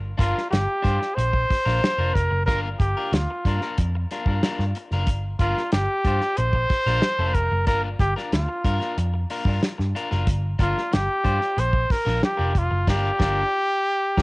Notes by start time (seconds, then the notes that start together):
Already playing: G1
0.18 G1 D4 F4 A#4, kick, closed hi-hat
0.38 snare
0.51 G1 G4, muted clean electric guitar stroke, snare, closed hi-hat
0.82 G2 D4 F4 C5, kick, closed hi-hat
1.01 muted clean electric guitar stroke, snare
1.16 A#1 C5, muted clean electric guitar stroke, closed hi-hat
1.33 muted clean electric guitar stroke, kick
1.51 kick, snare, open hi-hat
1.66 A#1 D4 F4 A#4, snare
1.82 muted clean electric guitar stroke, snare, closed hi-hat
1.98 F1 D4 F4 A#4
2.15 F1 A#4, muted clean electric guitar stroke, kick, closed hi-hat
2.31 F#1, muted clean electric guitar stroke
2.46 G1 D4 F4 A#4, kick, closed hi-hat
2.79 G1 G4, muted clean electric guitar stroke, kick, closed hi-hat
2.97 D4 F4 A#4
3.12 D2 F4, snare, closed hi-hat
3.31 muted clean electric guitar stroke
3.45 G2 D4 F4 A#4, kick, closed hi-hat
3.61 D4 F4 A#4, snare
3.78 F2, muted clean electric guitar stroke, kick, closed hi-hat
3.95 muted clean electric guitar stroke
4.11 D4 F4 A#4, snare, closed hi-hat
4.26 G2 D4 F4 A#4, kick
4.43 D4 F4 A#4, snare, closed hi-hat
4.59 G2, snare
4.75 muted clean electric guitar stroke, closed hi-hat
4.91 F#1 D4 F4 A#4, snare
5.07 G1, kick, closed hi-hat
5.39 G1 D4 F4 A#4, kick, closed hi-hat
5.57 snare
5.72 G1 G4, muted clean electric guitar stroke, snare, closed hi-hat
6.05 G2 D4 F4 C5, kick, closed hi-hat
6.21 muted clean electric guitar stroke, snare
6.37 A#1 C5, muted clean electric guitar stroke, closed hi-hat
6.53 muted clean electric guitar stroke, kick
6.70 kick, snare, open hi-hat
6.86 A#1 D4 F4 A#4, snare
7.02 muted clean electric guitar stroke, snare, closed hi-hat
7.19 F1 D4 F4 A#4
7.34 F1 A#4, muted clean electric guitar stroke, kick, closed hi-hat
7.51 F#1, muted clean electric guitar stroke
7.67 G1 D4 F4 A#4, kick, closed hi-hat
7.99 G1 G4, muted clean electric guitar stroke, kick, closed hi-hat
8.16 D4 F4 A#4, snare
8.32 D2 F4, muted clean electric guitar stroke, snare, closed hi-hat
8.49 muted clean electric guitar stroke
8.65 G2 D4 F4 A#4, kick, closed hi-hat
8.80 D4 F4 A#4, snare
8.98 F2, muted clean electric guitar stroke, closed hi-hat
9.14 muted clean electric guitar stroke
9.30 D4 F4 A#4, open hi-hat
9.45 G2 D4 F4 A#4, kick
9.62 muted clean electric guitar stroke, snare, closed hi-hat
9.78 G2, muted clean electric guitar stroke, snare
9.95 D4 F4 A#4, closed hi-hat
10.11 F#1 D4 F4 A#4, snare
10.27 G1, kick, closed hi-hat
10.59 G1 D4 F4 A#4, kick, closed hi-hat
10.78 snare
10.91 G1 G4, muted clean electric guitar stroke, snare, closed hi-hat
11.24 G2 D4 F4 C5, kick, closed hi-hat
11.40 muted clean electric guitar stroke, snare
11.57 A#1 C5, muted clean electric guitar stroke, closed hi-hat
11.73 muted clean electric guitar stroke, kick
11.90 A#4, kick, snare, open hi-hat
12.05 A#1 D4 F4 A#4, snare
12.22 G4, muted clean electric guitar stroke, snare, closed hi-hat
12.37 F1 D4 F4 A#4
12.53 F1, muted clean electric guitar stroke, kick, closed hi-hat
12.58 F4
12.71 F#1, muted clean electric guitar stroke
12.87 G1 D4 F4 G4 A#4, kick, snare, crash
13.19 G1 D4 F4 A#4, kick, snare
14.18 G1 D4 F4 A#4, kick, snare